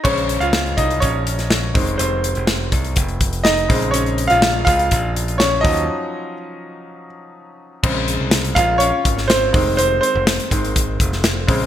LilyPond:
<<
  \new Staff \with { instrumentName = "Grand piano" } { \time 4/4 \key bes \minor \tempo 4 = 123 <des' des''>8. <f' f''>8. <ees' ees''>8 <des' des''>2 | <c' c''>4 r2 <ees' ees''>4 | <des' des''>8. <f' f''>8. <f' f''>4. <des' des''>8 <ees' ees''>8~ | <ees' ees''>2~ <ees' ees''>8 r4. |
r4. <f' f''>8 <des' des''>4 <c' c''>4 | <c' c''>8 <c' c''>2. r8 | }
  \new Staff \with { instrumentName = "Grand piano" } { \clef bass \time 4/4 \key bes \minor <des aes c''>2.~ <des aes c''>8 <ees aes c'>8 | r2. r8 <des aes c'>8 | r2. r8 <f ges des'>8~ | <f ges des'>4 r2. |
<des aes c'>8 r2. <ees aes c'>8 | r4. <ees aes c'>8 r4. <des aes c'>8 | }
  \new Staff \with { instrumentName = "Picked electric bass" } { \clef bass \time 4/4 \key bes \minor bes,,8. des,8. c,8 bes,,4. f,,8 | f,,8. f,,8. c,8 f,,4. bes,,8~ | bes,,8. bes,,8. des,8 bes,,4. ees,8 | r1 |
bes,,8. c,8. bes,,8. r16 aes,,4 f,,8~ | f,,8 r16 f,,8 r16 aes,,4 f,,4 bes,,8 | }
  \new DrumStaff \with { instrumentName = "Drums" } \drummode { \time 4/4 <cymc bd>16 hh16 hh16 hh16 sn16 hh16 <hh bd>16 hh16 <hh bd>8 hh16 <hh sn>16 sn8 <hho bd>16 hh16 | hh8 hh16 hh16 sn8 <hh bd>16 hh16 <hh bd>16 hh16 <hh bd>16 hh16 sn16 hh16 <hho bd>16 hh16 | hh16 hh16 hh16 hh16 sn8 <hh bd>16 hh16 <hh bd>8 hh16 hh16 sn8 <hho bd>16 hh16 | r4 r4 r4 r4 |
<cymc bd>8 hh8 <hh sn>16 hh16 <hh bd>8 hh8 <hh bd>16 sn16 <hh sn>8 <hho bd>8 | hh8 hh8 <hh sn>16 hh16 <hh bd>16 hh16 <hh bd>8 <hh bd>16 sn16 <hh sn>8 <hho bd>8 | }
>>